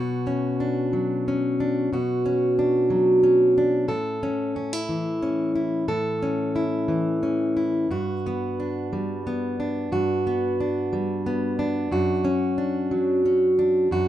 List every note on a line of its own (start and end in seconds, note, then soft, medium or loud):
0.00 1.91 B2 medium
0.00 1.92 F#4 medium
0.27 1.28 C#4 medium
0.60 1.59 D4 medium
0.93 1.89 F#3 medium
1.28 1.96 C#4 medium
1.60 1.89 D4 medium
1.93 3.89 B2 medium
1.93 3.88 F#4 medium
2.26 3.23 C#4 medium
2.59 3.57 D4 medium
2.90 3.85 F#3 medium
3.23 4.23 C#4 medium
3.58 3.86 D4 medium
3.88 5.84 A2 medium
3.88 5.85 A4 medium
4.23 4.55 C#4 medium
4.56 4.73 C#4 medium
4.73 5.54 E4 soft
4.89 6.87 E3 medium
5.23 5.85 C#4 medium
5.55 5.85 E4 medium
5.88 7.88 A2 medium
5.88 7.88 A4 medium
6.23 7.22 C#4 medium
6.56 7.55 E4 medium
6.88 7.92 E3 medium
7.23 7.88 C#4 medium
7.57 7.88 E4 medium
7.91 9.88 G2 medium
7.91 9.92 F#4 medium
8.26 9.26 B3 medium
8.60 9.59 D4 medium
8.93 9.88 G3 medium
9.27 9.89 B3 medium
9.60 10.60 D4 medium
9.92 11.86 G2 medium
9.92 11.92 F#4 medium
10.27 11.25 B3 medium
10.60 11.59 D4 medium
10.93 11.87 G3 medium
11.26 11.88 B3 medium
11.59 12.28 D4 medium
11.91 13.90 F#2 medium
11.91 13.91 F#4 medium
12.25 13.24 C#4 medium
12.58 13.58 D4 medium
12.91 13.88 F#3 medium
13.26 13.88 C#4 medium
13.59 14.08 D4 medium
13.91 14.08 F#2 medium
13.91 14.08 F#4 medium